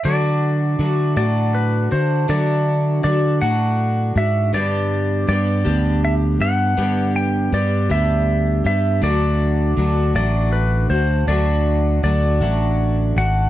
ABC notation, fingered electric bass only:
X:1
M:6/8
L:1/8
Q:3/8=53
K:Dmix
V:1 name="Fingered electric bass" clef=bass
D,2 D, A,,2 D, | D,2 D, A,,2 _A,, | G,,2 G,, D,,2 G,, | G,,2 G,, D,,2 G,, |
D,,2 D,, A,,,2 D,, | D,,2 D,, A,,,2 _A,,, |]